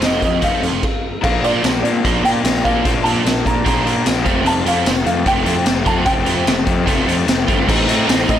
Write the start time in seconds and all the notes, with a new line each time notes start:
Already playing: D#3 F4
0.00 F1 F3 C4 D#4, snare, closed hi-hat, tambourine
0.05 D#5
0.22 F2 D#3 F3 C4 D#5, kick, closed hi-hat
0.42 F1 F3 A3 C4 D#4 F5, kick, closed hi-hat
0.62 F2 F3 C4 F4, closed hi-hat
0.71 F1
0.83 kick, crash
1.22 A#1 A#2 F3 A#3 D4 F5, kick, crash
1.43 A#2 F3 A#3 D4 F4 D5, closed hi-hat
1.63 A#1, snare, closed hi-hat, tambourine
1.82 A#2 F3 A#3 D4 D5, closed hi-hat
2.04 A#1 A#2 F3 A#3 D4 F4, kick, closed hi-hat
2.23 A#2 F3 A#3 D4 G5, closed hi-hat
2.43 A#1 A#2 F3 A#3 D4, snare, closed hi-hat, tambourine
2.63 A#2 F3 A#3 D4 F4 F5, kick, closed hi-hat
2.84 A#1 A#2 F3 A#3 D4, kick, closed hi-hat
3.03 A#2 F3 A#3 D4 F4 A5, closed hi-hat
3.25 A#1, snare, closed hi-hat, tambourine
3.45 A#2 F3 A#3 D4 A#5, kick, closed hi-hat
3.65 A#1 A#2 F3 A#3 D4 F4 A#5, kick, closed hi-hat
3.84 A#2 F3 A#3 D4, closed hi-hat
4.05 A#1 A#2 F3 A#3 D4, snare, closed hi-hat, tambourine
4.25 F1 F2 C3 F3 A3 C4 F4, kick, closed hi-hat
4.45 F1 F2 C3 F3 A3 C4 A5, closed hi-hat
4.65 F2 A3 C4 F4 F5, closed hi-hat
4.86 F1, snare, closed hi-hat, tambourine
5.05 F2 F3 A3 C4 F5, closed hi-hat
5.24 F1 C3 F3 A3 C4 F4 G5, kick, closed hi-hat
5.44 F2 F3 A3 C4, closed hi-hat
5.63 F1 F2 C3 F3 A3 C4, snare, closed hi-hat, tambourine
5.85 F2 F3 A3 C4 F4 A5, kick, closed hi-hat
6.05 F1 F2 C3 F3 A3 C4 G5, kick, closed hi-hat
6.26 F2 A3 C4 F4, closed hi-hat
6.47 F1, snare, closed hi-hat, tambourine
6.65 F2 F3 A3 C4, kick, closed hi-hat
6.85 F1 C3 F3 A3 C4 F4, kick, closed hi-hat
7.07 F2 F3 A3 C4, closed hi-hat
7.26 F1 F2 C3 F3 A3 C4, snare, closed hi-hat, tambourine
7.46 G1 F3 A3 C4 F4, kick, closed hi-hat
7.67 A1 A2 A3 C4 D#4, kick, crash
7.87 A2 A3 C4 D#4, closed hi-hat
8.08 A1 A2 A3 C4 D#4, snare, closed hi-hat, tambourine
8.28 A2 A3 C4 D#4 D#5, kick, closed hi-hat